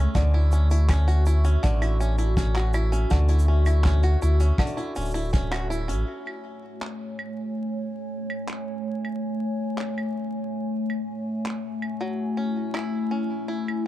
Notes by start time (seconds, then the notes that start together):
Already playing: A3 C#4 E4 G#4 G#5 C#6
0.15 D2 D3 F#4 E5 C#6, kick, closed hi-hat, shaker
0.34 E4
0.52 C#4, shaker
0.70 E4, closed hi-hat, shaker
0.89 C#4, kick, clap, closed hi-hat, claves, shaker
1.08 F#4, closed hi-hat
1.26 E4, shaker
1.45 C#4, closed hi-hat, shaker
1.63 A1 D3, kick, closed hi-hat, shaker
1.82 E4, closed hi-hat, claves
2.00 C#4, shaker
2.18 E4, closed hi-hat, shaker
2.37 C#4, kick, closed hi-hat, shaker
2.56 F#4, clap, closed hi-hat
2.74 E4, claves, shaker
2.92 C#4, closed hi-hat, shaker
3.10 D2 D3, kick, closed hi-hat, shaker
3.28 E4, closed hi-hat
3.39 shaker
3.48 C#4
3.66 E4, closed hi-hat, claves, shaker
3.84 C#4, kick, clap, closed hi-hat, shaker
4.03 F#4, closed hi-hat
4.22 D2 E4, shaker
4.40 C#4, closed hi-hat, shaker
4.58 D3, kick, claves, shaker
4.67 closed hi-hat
4.77 E4, closed hi-hat
4.96 D1 C#4, shaker
5.01 shaker
5.05 shaker
5.10 shaker
5.14 E4, closed hi-hat, shaker
5.20 shaker
5.24 shaker
5.29 shaker
5.33 C#4, kick, closed hi-hat, shaker
5.51 F#4, clap, closed hi-hat, claves
5.70 E4, shaker
5.88 A1 C#4, closed hi-hat, shaker
6.09 A3 C#5 G#5
6.27 claves
6.82 clap
7.19 claves
8.30 claves
8.48 clap
9.05 claves
9.78 clap
9.98 claves
10.90 claves
11.46 clap
11.82 claves
12.00 F#3 E4
12.37 C#4
12.74 E4, clap, claves
13.11 C#4
13.48 E4
13.68 claves